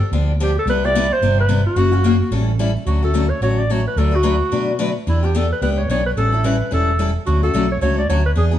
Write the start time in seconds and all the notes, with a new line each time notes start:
Already playing: A4
0.12 D2 D3 F3 B3 D4 G4
0.40 D3 F3 B3 D4 G4
0.59 A4
0.66 C2 C3 G3 B3 E4 G4 B4
0.84 B3 E4 G4 D5
0.95 C3 G3 B3 E4 G4
1.13 C5
1.21 G1 C3 G3 B3 E4 G4
1.40 B4
1.49 C3 G3 B3 E4 G4
1.66 F#4
1.76 F#1 C#3 E3 A#3 C#4 F#4
1.92 A#3 C#4 F#4
2.04 C#3 E3 A#3 C#4 F#4
2.31 A1 E3 G3 C#4 E4 A4
2.59 E3 G3 C#4 E4 A4
2.86 D2 D3 F#3 A3 C#4 F#4
3.02 A3 C#4 F#4 A4
3.14 D3 F#3 A3 C#4 F#4
3.30 C#5
3.41 A1 D3 F#3 A3 C#4 F#4 C#5
3.59 D5
3.70 D3 F#3 A3 C#4 F#4 C#5
3.88 B4
3.96 D2 D3 F#3 A3 D4 F#4 A4 B4
4.11 A3 D4 F#4 B4
4.15 F#4
4.23 D3 F#3 A3 D4 F#4 B4
4.52 B2 D3 F#3 A3 D4 F#4 B4
4.79 D3 F#3 A3 D4 F#4 B4
5.07 E2 E3 B3 D4 E4 G4
5.23 B3 D4 G4
5.35 E3 B3 D4 G4 A4
5.52 B4
5.62 C#2 E3 B3 D4 G4 B4
5.73 B4
5.78 C#5
5.89 B1 E3 B3 D4 G4 C#5
6.06 B4
6.17 A1 E3 G3 C#4 E4 A4
6.32 C#4 E4 A4
6.44 E3 G3 C#4 E4 A4 B4
6.71 E1 E3 G3 C#4 E4 A4
6.99 E3 G3 C#4 E4 A4
7.26 D2 D3 F#3 A3 C#4 F#4
7.43 A3 C#4 F#4 A4
7.54 B1 D3 F#3 A3 C#4 F#4
7.71 C#5
7.81 C#2 D3 F#3 A3 C#4 F#4 C#5
7.99 D5
8.09 D2 D3 F#3 A3 C#4 F#4 C#5
8.26 B4
8.35 E2 E3 B3 D4 G#4
8.51 B3 D4 E4 G#4